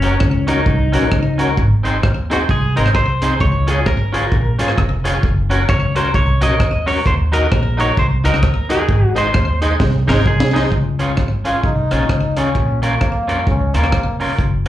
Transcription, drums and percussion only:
0.02 closed hi-hat
0.20 kick, cross-stick
0.48 closed hi-hat
0.66 kick
0.93 closed hi-hat
1.12 kick, cross-stick
1.39 closed hi-hat
1.57 kick
1.85 closed hi-hat
2.03 kick, cross-stick
2.31 closed hi-hat
2.49 kick
2.77 closed hi-hat
2.86 cross-stick
2.95 kick, cross-stick
3.22 closed hi-hat
3.40 kick
3.68 closed hi-hat
3.86 kick, cross-stick
4.14 closed hi-hat
4.32 kick
4.59 closed hi-hat
4.68 cross-stick
4.78 kick, cross-stick
5.05 closed hi-hat
5.23 kick
5.51 closed hi-hat
5.69 kick, cross-stick
5.96 closed hi-hat
6.14 kick
6.42 closed hi-hat
6.60 kick, cross-stick
6.87 open hi-hat
7.06 kick, hi-hat pedal
7.33 closed hi-hat
7.52 kick, cross-stick
7.80 closed hi-hat
7.97 kick
8.25 closed hi-hat
8.34 cross-stick
8.43 kick, cross-stick
8.70 closed hi-hat
8.89 kick
9.16 closed hi-hat
9.34 kick, cross-stick
9.62 closed hi-hat
9.80 kick, snare
10.10 snare
10.26 kick
10.40 snare
10.56 snare
10.72 kick
10.99 closed hi-hat
11.17 kick, cross-stick
11.45 closed hi-hat
11.64 kick
11.91 cross-stick, closed hi-hat
12.09 kick, cross-stick
12.37 closed hi-hat
12.55 kick
12.83 closed hi-hat
13.01 kick, cross-stick
13.29 closed hi-hat
13.47 kick
13.74 cross-stick, closed hi-hat
13.84 cross-stick
13.92 kick, cross-stick
14.20 open hi-hat
14.39 kick, hi-hat pedal

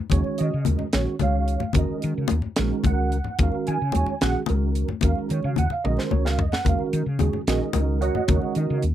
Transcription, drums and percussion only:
0.10 kick, closed hi-hat, high conga, low conga
0.24 low conga
0.38 closed hi-hat
0.65 closed hi-hat, high conga
0.79 low conga
0.93 snare, closed hi-hat
1.19 closed hi-hat, high conga
1.48 closed hi-hat
1.60 low conga
1.73 kick, closed hi-hat, high conga, low conga
2.02 closed hi-hat
2.28 closed hi-hat, high conga
2.42 low conga
2.56 snare, closed hi-hat
2.69 low conga
2.84 kick, closed hi-hat, high conga
3.12 closed hi-hat
3.24 low conga
3.39 kick, closed hi-hat, high conga, low conga
3.52 low conga
3.67 closed hi-hat
3.92 closed hi-hat, high conga
4.06 low conga
4.21 snare, closed hi-hat
4.46 closed hi-hat, high conga
4.75 closed hi-hat
4.88 low conga
5.01 kick, closed hi-hat, high conga, low conga
5.29 closed hi-hat, low conga
5.42 low conga
5.56 closed hi-hat, high conga
5.70 low conga
5.85 high tom
5.97 snare, low conga
6.11 high conga
6.26 snare
6.39 floor tom
6.52 snare, low conga
6.65 kick, closed hi-hat, high conga, low conga
6.79 low conga
6.93 closed hi-hat
7.19 closed hi-hat, high conga
7.33 low conga
7.47 snare, closed hi-hat
7.60 low conga
7.73 closed hi-hat, high conga
8.02 closed hi-hat
8.15 low conga
8.28 kick, closed hi-hat, high conga, low conga
8.41 low conga
8.55 closed hi-hat
8.82 closed hi-hat

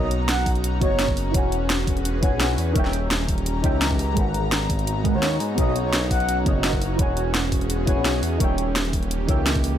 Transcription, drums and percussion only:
0.11 closed hi-hat
0.29 snare, closed hi-hat
0.46 kick, open hi-hat
0.55 closed hi-hat
0.64 closed hi-hat
0.82 kick, closed hi-hat
0.99 snare, closed hi-hat
1.08 kick
1.17 open hi-hat
1.34 kick, closed hi-hat
1.52 closed hi-hat
1.70 snare, closed hi-hat
1.87 kick, open hi-hat
1.97 closed hi-hat
2.05 closed hi-hat
2.23 kick, closed hi-hat
2.40 snare, closed hi-hat
2.58 open hi-hat
2.76 kick, closed hi-hat
2.85 snare
2.93 closed hi-hat
3.11 snare, closed hi-hat
3.28 kick, open hi-hat
3.38 closed hi-hat
3.46 closed hi-hat
3.64 kick, closed hi-hat
3.82 snare, closed hi-hat
3.91 kick
3.99 open hi-hat
4.17 kick, closed hi-hat
4.34 closed hi-hat
4.52 snare, closed hi-hat
4.70 kick, open hi-hat
4.79 closed hi-hat
4.87 closed hi-hat
5.05 kick, closed hi-hat
5.23 snare, closed hi-hat
5.40 open hi-hat
5.58 kick, closed hi-hat
5.76 closed hi-hat
5.93 snare, closed hi-hat
6.11 kick, open hi-hat
6.20 closed hi-hat
6.29 closed hi-hat
6.46 kick, closed hi-hat
6.64 snare, closed hi-hat
6.73 kick
6.82 open hi-hat
6.99 kick, closed hi-hat
7.17 closed hi-hat
7.34 snare, closed hi-hat
7.52 kick, open hi-hat
7.61 closed hi-hat
7.70 closed hi-hat
7.87 kick, closed hi-hat
8.05 snare, closed hi-hat
8.23 open hi-hat
8.40 kick, closed hi-hat
8.58 closed hi-hat
8.76 snare, closed hi-hat
8.85 closed hi-hat
8.93 kick, open hi-hat
9.03 closed hi-hat
9.11 closed hi-hat
9.29 kick, closed hi-hat
9.46 snare, closed hi-hat
9.55 kick, closed hi-hat
9.64 open hi-hat

